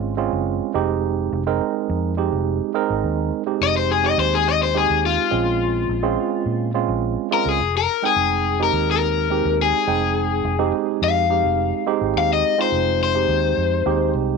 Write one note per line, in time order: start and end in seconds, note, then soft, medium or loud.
0.00 0.29 G#1 medium
0.00 0.14 G#3 medium
0.00 0.14 C4 medium
0.00 0.14 C#4 medium
0.00 0.14 F4 medium
0.17 0.71 G#3 medium
0.17 0.72 C4 medium
0.17 0.72 C#4 medium
0.17 0.72 F4 medium
0.33 0.59 F#1 medium
0.74 1.28 F1 medium
0.74 1.42 G#3 medium
0.74 1.42 C4 medium
0.74 1.43 D#4 medium
0.74 1.43 G4 loud
1.32 1.59 F1 medium
1.47 2.14 G#3 medium
1.47 2.14 C4 medium
1.47 2.14 D#4 medium
1.47 2.14 A#4 medium
1.90 2.29 F2 medium
2.17 2.71 G#3 medium
2.17 2.72 C4 medium
2.17 2.72 D#4 medium
2.17 2.72 G4 medium
2.33 2.59 F1 medium
2.75 3.42 G#3 medium
2.75 3.42 C4 medium
2.75 3.43 D#4 medium
2.75 3.43 A#4 loud
2.90 3.03 G#1 medium
3.04 3.30 D#2 medium
3.46 4.00 G#3 medium
3.46 4.00 C4 medium
3.46 4.01 D#4 medium
3.46 4.01 G4 medium
3.61 4.14 F1 medium
3.61 3.76 D#5 medium
3.77 3.90 C5 medium
3.91 4.05 G#4 medium
4.03 4.70 G#3 medium
4.03 4.71 C4 medium
4.03 4.71 D#4 medium
4.03 4.71 G4 medium
4.03 4.18 D#5 medium
4.18 4.86 D#2 medium
4.18 4.33 C5 medium
4.35 4.47 G#4 medium
4.48 4.62 D#5 medium
4.63 4.75 C5 medium
4.74 5.28 G#3 medium
4.74 5.29 C4 medium
4.74 5.29 D#4 medium
4.74 5.29 G4 medium
4.74 5.04 G#4 medium
4.90 5.16 D#2 medium
5.06 6.72 F4 medium
5.30 5.85 A#1 medium
5.30 5.99 G#3 medium
5.30 5.99 C4 medium
5.30 5.99 C#4 medium
5.30 5.99 F4 medium
5.89 6.15 A#1 medium
6.03 6.70 G#3 medium
6.03 6.70 C4 medium
6.03 6.70 C#4 medium
6.03 6.70 F4 medium
6.46 6.86 A#2 medium
6.74 7.28 G#3 medium
6.74 7.28 C4 medium
6.74 7.28 C#4 medium
6.74 7.28 F4 medium
6.88 7.15 A#1 medium
7.31 7.60 G#3 medium
7.31 7.60 C4 medium
7.31 7.60 C#4 medium
7.31 7.60 F4 medium
7.31 7.49 A#4 medium
7.45 7.58 C#2 medium
7.45 7.75 G#4 medium
7.59 7.86 F1 medium
7.77 8.04 A#4 medium
8.03 8.56 G#3 medium
8.03 8.57 C4 medium
8.03 8.57 D#4 medium
8.03 8.60 G#4 medium
8.03 8.57 G5 medium
8.16 8.69 F1 medium
8.59 9.26 G#3 medium
8.59 9.27 C4 medium
8.59 9.27 D#4 medium
8.59 9.27 G4 medium
8.59 8.89 A#4 medium
8.73 9.41 D#2 medium
8.91 9.59 A#4 medium
9.30 9.84 G#3 medium
9.30 9.84 C4 medium
9.30 9.85 D#4 medium
9.30 9.85 G4 medium
9.45 9.72 D#2 medium
9.62 10.71 G#4 medium
9.87 10.40 F1 medium
9.87 10.55 G#3 medium
9.87 10.55 C4 medium
9.87 10.55 D#4 medium
9.87 10.55 G5 medium
10.44 10.71 F1 medium
10.59 11.26 G#3 medium
10.59 11.26 C4 medium
10.59 11.26 D#4 medium
10.59 11.26 G4 medium
11.02 11.41 F2 medium
11.02 12.13 F5 medium
11.30 11.84 G#3 medium
11.30 11.84 C4 medium
11.30 11.84 D#4 medium
11.30 11.84 G4 medium
11.44 11.71 F1 medium
11.87 12.54 G#3 medium
11.87 12.54 C4 medium
11.87 12.54 D#4 medium
11.87 12.54 G4 loud
12.01 12.14 G#1 medium
12.15 12.41 D#2 medium
12.15 12.31 F5 medium
12.33 12.59 D#5 medium
12.58 13.12 G#3 medium
12.58 13.12 C4 medium
12.58 13.12 D#4 medium
12.58 13.12 F4 medium
12.58 13.01 C5 medium
12.72 13.25 F1 medium
13.04 14.13 C5 medium
13.14 13.82 G#3 medium
13.14 13.82 C4 medium
13.14 13.82 D#4 medium
13.14 13.82 G4 medium
13.29 13.55 D#2 medium
13.57 13.83 F2 medium
13.85 14.12 D#2 medium
13.85 14.37 G#3 medium
13.85 14.37 C4 medium
13.85 14.37 D#4 medium
13.85 14.37 G4 medium
14.14 14.37 C2 medium